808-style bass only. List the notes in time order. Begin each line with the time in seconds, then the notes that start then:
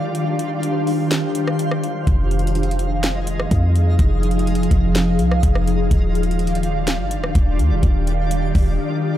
2.07 F1
3.51 F2
3.99 F1
4.71 F1
5.19 C2
5.43 F1
5.91 D#1
6.99 G1
7.17 D#1
7.35 D#1
7.59 D#2
7.71 D#1
7.83 D#1
8.55 D#1